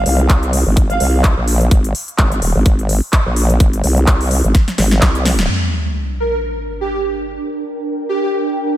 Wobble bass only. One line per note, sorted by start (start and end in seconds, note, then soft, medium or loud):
0.06 0.28 C2 medium
0.29 0.64 C2 loud
0.66 0.99 G#1 medium
1.00 1.35 C2 loud
1.37 1.70 A#1 medium
1.71 1.93 G#1 medium
2.19 2.41 G#1 medium
2.42 2.53 D#1 loud
2.55 2.64 G#1 medium
2.66 3.01 G#1 loud
3.26 3.59 A#1 medium
3.60 3.82 G#1 loud
3.84 4.06 C2 medium
4.07 4.42 C2 loud
4.44 4.53 G#1 medium
4.78 5.00 G#1 loud
5.02 5.48 C2 medium